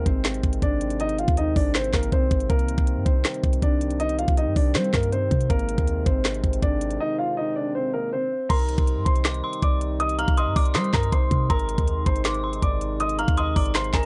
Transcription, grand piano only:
0.06 C4 C5
0.63 D4 D5
1.01 D#4 D#5
1.19 F4 F5
1.37 D#4 D#5
1.56 D4 D5
1.75 C4 C5
1.94 A#3 A#4
2.13 C4 C5
2.49 A#3 A#4
3.05 C4 C5
3.63 D4 D5
4.00 D#4 D#5
4.19 F4 F5
4.37 D#4 D#5
4.56 D4 D5
4.75 C4 C5
4.93 A#3 A#4
5.12 C4 C5
5.50 A#3 A#4
6.06 C4 C5
6.62 D4 D5
7.00 D#4 D#5
7.19 F4 F5
7.37 D#4 D#5
7.56 D4 D5
7.75 C4 C5
7.93 A#3 A#4
8.13 C4 C5
8.49 A#4 A#5
9.05 C5 C6
9.62 D5 D6
10.00 D#5 D#6
10.19 F5 F6
10.37 D#5 D#6
10.56 D5 D6
10.75 C5 C6
10.94 A#4 A#5
11.12 C5 C6
11.50 A#4 A#5
12.06 C5 C6
12.62 D5 D6
13.00 D#5 D#6
13.19 F5 F6
13.38 D#5 D#6
13.56 D5 D6
13.75 C5 C6
13.94 A#4 A#5

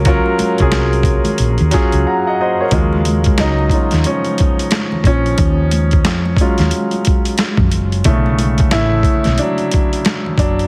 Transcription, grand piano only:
Already playing: F#3 C#4 F4 G#4 A#4
0.05 F#3 C#4 F4 A#4
0.59 F#3 C#4 F4 G#4
1.71 F#3 C#4 F4 G#4
2.07 F#5 A#5
2.27 D#5 F#5
2.41 C5 D#5
2.61 A#4 C#5
2.73 C#3 F#3 G#3 C#4 F4
3.40 F#3 D#4
3.73 F#3 G#3 C#4 F4
4.06 F3 C#4
5.07 F3 C#4
6.41 F#3 G#3 C#4 F4
8.05 C#3 D3 E3 A3 C#4
8.72 A3 E4
9.39 F#3 D4
10.39 F#3 D4

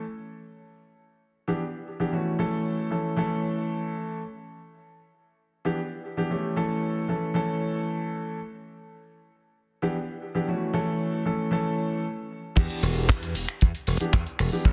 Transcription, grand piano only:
1.48 E3 B3 D4 G4
2.00 E3 B3 D4 G4
2.12 E3 A3 C#4 F#4
2.39 E3 A3 C#4 A4
2.90 E3 A3 C#4 A4
3.16 E3 A3 C#4 A4
5.65 E3 B3 D4 G4
6.17 E3 B3 D4 G4
6.30 E3 A3 C#4 G4
6.56 E3 A3 C#4 A4
7.08 E3 A3 C#4 A4
7.34 E3 A3 C#4 A4
9.82 E3 B3 D4 G4
10.35 E3 B3 D4 G4
10.48 E3 A3 C#4 F#4
10.73 E3 A3 C#4 A4
11.25 E3 A3 C#4 A4
11.51 E3 A3 C#4 A4
12.56 E3 B3 D4 G4
14.00 E3 B3 D4 G4
14.52 E3 B3 D4 G4
14.65 E3 A3

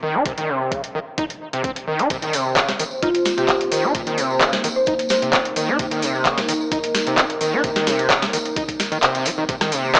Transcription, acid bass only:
0.03 D#3
0.15 D#4
0.26 C3
0.38 D#3
0.49 C3
0.72 C#3
0.95 D#3
1.18 D#4
1.53 C3
1.64 C4
1.87 D#3
1.99 D#4
2.10 C3
2.22 D#3
2.33 C3
2.56 C#3
2.68 C3
2.79 D#3
3.02 D#4
3.38 C3
3.49 C4
3.72 D#3
3.84 D#4
3.95 C3
4.07 D#3
4.18 C3
4.41 C#3
4.53 C3
4.64 D#3
4.87 D#4
5.22 C3
5.33 C4
5.56 D#3
5.68 D#4
5.79 C3
5.91 D#3
6.02 C3
6.26 C#3
6.38 C3
6.49 D#3
6.72 D#4
7.07 C3
7.18 C4
7.41 D#3
7.53 D#4
7.64 C3
7.76 D#3
7.87 C3
8.10 C#3
8.22 C3
8.33 D#3
8.56 D#4
8.92 D#3
9.03 C3
9.26 G3
9.38 D#3
9.49 C3
9.61 D#3
9.72 C3
9.95 C#3

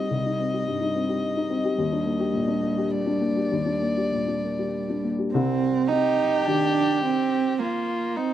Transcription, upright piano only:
Already playing: C2 G2 C4 D#4 G4
0.11 C2
0.26 D#4
0.39 C4
0.54 G4
0.68 G2
0.81 D#4
0.95 C4
1.09 G4
1.36 D#4
1.50 C4
1.64 G4
1.78 D#2
1.92 D4
2.05 A#3
2.20 G4
2.33 A#2
2.48 D4
2.62 A#3
2.77 G4
3.06 D4
3.20 A#3
3.36 G4
3.52 D#2
3.65 D4
3.82 A#3
3.97 G4
4.12 A#2
4.27 D4
4.44 A#3
4.59 G4
4.89 D4
5.03 A#3
5.19 G4
5.34 C2
5.91 C4
6.48 D#3 G4

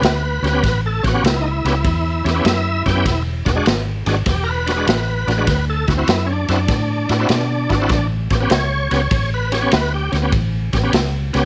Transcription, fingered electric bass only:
0.02 D2
0.42 D2
0.64 A1
1.04 A1
1.24 C#2
1.65 C#2
1.84 E2
2.25 E2
2.45 F#2
2.86 F#2
3.06 E1
3.46 E1
3.66 G#1
4.07 G#1
4.26 E1
4.87 A1
5.28 A1
5.47 D2
5.88 D2
6.08 F#2
6.49 F#2
6.69 A2
7.10 A2
7.29 B2
7.70 G#1
7.90 A1
8.31 A1
8.51 C#2
8.91 C#2
9.11 A1
9.72 D2
10.13 D2
10.33 A1
10.73 A1
10.93 C#2
11.35 C#2

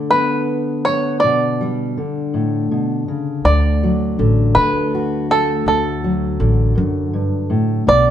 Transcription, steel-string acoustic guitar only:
Already playing: D3 A3
0.13 B3
0.88 B3
1.24 B2
1.61 G3
1.97 D3
2.34 A2
2.71 B2
3.08 C#3
3.46 D2
3.83 F#3
4.19 D3
4.56 A3
4.95 F#4
5.30 A3
5.67 D2
6.04 F#3
6.40 D3
6.75 F#2
7.13 G2
7.50 A2
7.87 B2

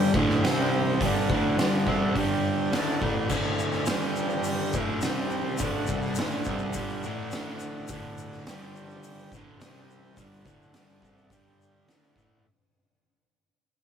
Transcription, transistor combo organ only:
Already playing: G4 D5 G5
0.42 G4 C5 G5
1.03 A4 D5 F#5
2.18 G4 D5 G5
2.76 A4 D5 F#5 A5
3.05 F#5
3.89 G4 D5 G5
5.06 G4 C5 G5
5.61 A4 D5 F#5
8.47 G4 D5 G5
9.58 G4 C5 G5
10.20 A4 D5 F#5
11.32 G4 D5 G5
11.87 A4 D5 F#5

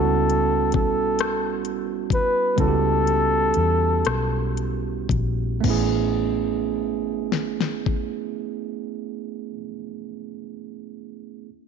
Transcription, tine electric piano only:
Already playing: G3 B3 C#4 E4 F#4
2.56 G3 B3 C#4 E4
2.61 F#4
2.68 G4
5.61 A3 B3
5.65 C#4 E4
5.70 G#4

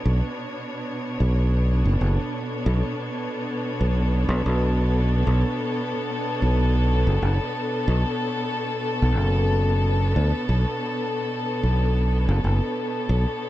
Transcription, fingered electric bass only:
0.05 B1
1.20 B1
1.85 F#1
2.01 F#1
2.66 B1
3.81 B1
4.29 B1
4.46 B1
5.27 B1
6.42 B1
7.07 F#1
7.22 F#1
7.88 B1
9.02 B1
9.18 F#1
10.16 D2
10.49 B1
11.63 B1
12.29 F#1
12.44 F#1
13.09 B1

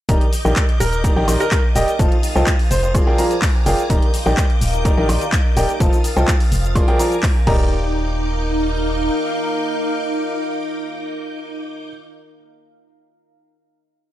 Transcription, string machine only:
0.09 D#5 D6 G6
1.99 F5 D#6 A6
2.95 G#5 A#5 D6
3.90 D#5 G6
5.80 F5 D#6 A6
6.75 G#5 A#5 D6
7.47 D#4 D6 G6

